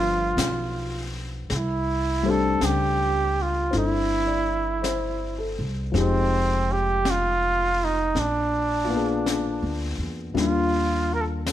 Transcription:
Already playing: upright bass G1, grand piano F3 A3 B3 D4 G4, trumpet F4
0.37 upright bass B1, brush sweep, snare, hi-hat pedal
1.50 upright bass C2, brush sweep, snare
1.56 trumpet E4
2.23 grand piano G3 A3 C4
2.28 grand piano D4 G4, trumpet A4
2.61 upright bass C#2, brush sweep, snare, hi-hat pedal
2.66 trumpet G4
3.42 trumpet F4
3.71 upright bass G1, grand piano C4 D4 E4 A4, brush sweep, snare
3.78 trumpet E4
4.27 grand piano D5
4.82 grand piano C5, brush sweep, snare, hi-hat pedal
5.39 grand piano A4
5.59 upright bass C2
5.92 upright bass F1, grand piano F3 G#3 C4 D#4, brush sweep, snare
5.97 trumpet C4, grand piano G4
6.72 trumpet G4
7.05 brush sweep, snare, hi-hat pedal
7.10 trumpet F4
7.84 trumpet D#4
8.15 upright bass A#1, brush sweep, snare
8.19 trumpet D4
8.84 grand piano A#3 F4
8.90 grand piano B3 D4
8.96 grand piano G#4
9.26 brush sweep, snare, hi-hat pedal
9.62 upright bass D2
9.98 upright bass E2
10.34 upright bass D#2, grand piano G3 A#3 D4 F4, brush sweep, snare
10.39 trumpet F4
11.14 trumpet A#4
11.21 trumpet A4
11.46 brush sweep, snare, hi-hat pedal

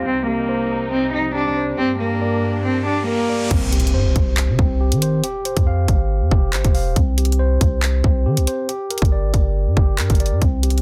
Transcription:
Already playing: string section C3 G3
0.06 string section C2 D#4, cello C4, tine electric piano C4
0.27 cello A#3, tine electric piano G4
0.49 tine electric piano C5
0.92 cello C4
1.13 tine electric piano C4, cello D#4
1.35 cello D4, tine electric piano G4
1.57 tine electric piano C5
1.78 string section G2 A#3 D4, cello C4, tine electric piano G4, riser
2.00 cello A#3, tine electric piano A#4
2.21 tine electric piano D5
2.65 cello C4
2.86 cello D4, tine electric piano G4
3.08 cello A#3, tine electric piano A#4
3.29 tine electric piano D5
3.51 808-style bass C2, tine electric piano C4, kick, closed hi-hat, crash, impact
3.72 tine electric piano G4, closed hi-hat
3.80 closed hi-hat
3.87 closed hi-hat
3.94 808-style bass G2, tine electric piano C5
4.06 808-style bass C2
4.16 808-style bass C2, kick, closed hi-hat
4.37 clap
4.49 808-style bass C3
4.59 808-style bass C2, tine electric piano C4, kick
4.81 tine electric piano G4
4.92 808-style bass D#3, closed hi-hat
5.02 tine electric piano C5, closed hi-hat
5.24 tine electric piano G4, closed hi-hat
5.45 tine electric piano C5, closed hi-hat
5.57 808-style bass F2, kick, closed hi-hat
5.67 tine electric piano F5
5.88 808-style bass G#1, kick, closed hi-hat
6.21 808-style bass F2
6.31 808-style bass F1, tine electric piano G4, kick
6.53 808-style bass G#1, tine electric piano C5, clap, closed hi-hat
6.64 808-style bass F1, kick, closed hi-hat
6.75 tine electric piano F5, open hi-hat
6.86 808-style bass D#1
6.96 808-style bass C2, tine electric piano C4, kick, closed hi-hat
7.18 tine electric piano G4, closed hi-hat
7.25 closed hi-hat
7.32 closed hi-hat
7.39 tine electric piano C5
7.61 808-style bass C2, kick, closed hi-hat
7.83 clap
8.04 808-style bass C2, tine electric piano C4, kick
8.26 808-style bass D#3, tine electric piano G4
8.37 808-style bass C2, closed hi-hat
8.47 tine electric piano C5, closed hi-hat
8.69 tine electric piano G4, closed hi-hat
8.91 tine electric piano A#4, closed hi-hat
8.98 closed hi-hat
9.02 808-style bass G1, kick, closed hi-hat
9.12 tine electric piano D5
9.23 808-style bass G#1
9.34 808-style bass G1, kick, closed hi-hat
9.67 808-style bass G2
9.77 808-style bass G1, tine electric piano G4, kick
9.98 808-style bass G2, tine electric piano A#4, clap, closed hi-hat
10.10 808-style bass G1, kick, closed hi-hat
10.15 closed hi-hat
10.20 tine electric piano D5, closed hi-hat, open hi-hat
10.26 closed hi-hat
10.31 808-style bass G2
10.42 808-style bass C2, tine electric piano C4, kick, closed hi-hat
10.63 tine electric piano G4, closed hi-hat
10.70 closed hi-hat
10.78 closed hi-hat

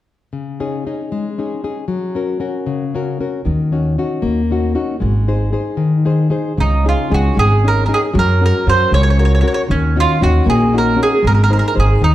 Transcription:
0.33 nylon-string guitar C#3
0.60 nylon-string guitar C#4 D#4 G#4
0.87 nylon-string guitar C#4 D#4 G#4
1.12 nylon-string guitar G#3
1.38 nylon-string guitar C#4 D#4 G#4
1.64 nylon-string guitar C#4 D#4 G#4
1.88 nylon-string guitar F#3
2.15 nylon-string guitar C#4 F#4 A#4
2.40 nylon-string guitar C#4 F#4 A#4
2.66 nylon-string guitar C#3
2.95 nylon-string guitar C#4 F#4 A#4
3.20 nylon-string guitar C#4 F#4 A#4
3.45 upright bass D#2, nylon-string guitar D#3
3.72 nylon-string guitar C#4 D#4 F#4
3.98 nylon-string guitar C#4 D#4 F#4
4.22 upright bass D#2, nylon-string guitar A#3
4.51 nylon-string guitar C#4 D#4 F#4
4.75 nylon-string guitar C#4 D#4 F#4
5.00 upright bass G#1, nylon-string guitar G#3
5.28 nylon-string guitar D#4 G#4 C5
5.52 nylon-string guitar D#4 G#4 C5
5.77 nylon-string guitar D#3
6.05 nylon-string guitar D#4 G#4 C5
6.30 nylon-string guitar D#4 G#4 C5
6.57 upright bass C#2, nylon-string guitar C#3, mandolin D#4
6.84 nylon-string guitar C#4 D#4 G#4
6.89 mandolin F4
7.10 upright bass C#2, nylon-string guitar C#4 D#4 G#4, mandolin F#4
7.36 upright bass G#1, nylon-string guitar G#3, mandolin G#4
7.64 nylon-string guitar C#4 D#4 G#4, mandolin A#4
7.86 nylon-string guitar C#4 D#4 G#4, mandolin A#4
7.94 mandolin G#4
8.14 upright bass F#2, nylon-string guitar F#3
8.19 mandolin A#4
8.41 nylon-string guitar C#4 F#4 A#4
8.46 mandolin A#4
8.67 upright bass F#2, nylon-string guitar C#4 F#4 A#4, mandolin C5
8.91 upright bass C#2, nylon-string guitar C#3, mandolin C#5
9.03 mandolin C#5
9.10 mandolin C#5
9.19 nylon-string guitar C#4 F#4 A#4, mandolin C#5
9.25 mandolin C#5
9.35 mandolin C#5
9.41 nylon-string guitar C#4 F#4 A#4, mandolin C#5
9.48 mandolin C#5
9.54 mandolin C#5
9.68 upright bass D#2, nylon-string guitar D#3, mandolin C#4
9.96 nylon-string guitar C#4 D#4 F#4, mandolin F4
10.21 upright bass D#2, nylon-string guitar C#4 D#4 F#4, mandolin F#4
10.46 upright bass A#1, nylon-string guitar A#3, mandolin G#4
10.73 nylon-string guitar C#4 D#4 F#4
10.78 mandolin A#4
10.96 nylon-string guitar C#4 D#4 F#4
11.03 mandolin G#4
11.22 upright bass G#1, nylon-string guitar G#3
11.27 mandolin A#4
11.35 mandolin A#4
11.44 mandolin A#4
11.50 nylon-string guitar D#4 G#4 C5, mandolin A#4
11.59 mandolin A#4
11.68 mandolin A#4
11.75 upright bass G#1, nylon-string guitar D#4 G#4 C5
11.80 mandolin G#4
12.02 upright bass D#2, nylon-string guitar D#3, mandolin D#4

